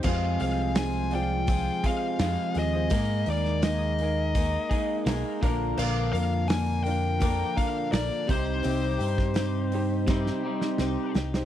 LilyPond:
<<
  \new Staff \with { instrumentName = "Lead electric guitar" } { \time 4/4 \key c \minor \tempo 4 = 84 f''8 f''8 aes''8 g''4 f''4 ees''8~ | ees''8 d''8 ees''2 r4 | f''8 f''8 aes''8 g''4 f''8 d''8 c''8~ | c''2.~ c''8 r8 | }
  \new Staff \with { instrumentName = "Grand piano" } { \time 4/4 \key c \minor << { r1 | r2 r8 aes''8 bes''8 bes''8 | r1 | r1 | } \\ { <c' f' aes' c''>4~ <c' f' aes' c''>16 r16 <c' f' aes' d''>4. r8. <c' f' aes' c''>16 | <bes ees' aes' bes'>4~ <bes ees' aes' bes'>16 r16 <bes ees' aes' bes'>4. r8 <bes d' f' bes'>8~ | <bes d' f' bes'>4 r8 <bes d' f' bes'>4. r8 <c' ees' g' c''>8~ | <c' ees' g' c''>4 r8 <c' ees' g' c''>4. r8. <c' ees' g' c''>16 | } >> }
  \new Staff \with { instrumentName = "Twelve-string acoustic guitar" } { \time 4/4 \key c \minor <f c' f' aes'>8 <c' f' aes'>8 <f c' f' aes'>8 <c' f' aes'>8 <f c' f' aes'>4 <f c' f' aes'>8 <c' f' aes'>8 | <aes bes ees' bes'>8 <bes ees' bes'>8 <aes bes ees' bes'>4 <aes bes ees' bes'>4 <aes bes ees' bes'>8 <f bes d' bes'>8 | <bes, d f bes d' bes'>8 <f bes d' bes'>8 <f bes d' bes'>8 <f bes d' bes'>8 <bes, d f bes d' bes'>4 <f bes d' bes'>8 <c' ees' g'>8 | <c g c' ees' g'>8 <c' ees' g'>8 <g c' ees' g'>4 <c g c' ees' g'>4 <g c' ees' g'>8 <c' ees' g'>8 | }
  \new Staff \with { instrumentName = "Clean electric guitar" } { \time 4/4 \key c \minor <f, c f aes c' aes'>2~ <f, c f aes c' aes'>8 <f, c f aes c' aes'>8 <f, c f aes c' aes'>4 | <aes bes ees' aes'>2~ <aes bes ees' aes'>8 <aes bes ees' aes'>8 <aes bes ees' aes'>8 <bes, d f bes d' bes'>8~ | <bes, d f bes d' bes'>2 <bes, d f bes d' bes'>8 <bes, d f bes d' bes'>4 <c g c' ees' g'>8~ | <c g c' ees' g'>2 <c g c' ees' g'>8 <c g c' ees' g'>4 r8 | }
  \new Staff \with { instrumentName = "Fingered electric bass" } { \clef bass \time 4/4 \key c \minor f,8 c,2 r8 f,16 r16 ees,8 | aes,8 ees,2 r8 b,,16 r16 bes,,8 | bes,,8 f,2 r8 bes,,16 r16 c,8 | c,8 g,2 r8 c,16 r16 c,8 | }
  \new DrumStaff \with { instrumentName = "Drums" } \drummode { \time 4/4 <cymc bd>8 hho8 <hho sn>8 hho8 <hho bd>8 <hho bd>8 <hho sn>8 hho8 | <hho bd>8 hho16 sn16 <hho sn>8 hho8 <hho bd>8 <hho bd>8 <hho sn>8 <hho bd>8 | cymc8 hho8 <hho sn>8 hho8 <hho bd>8 <hho bd>8 <hho sn>8 <hho bd>8 | hho8 hho16 <bd sn>16 <hho sn>8 hho8 <bd sn>16 sn8 sn16 sn8 sn16 sn16 | }
>>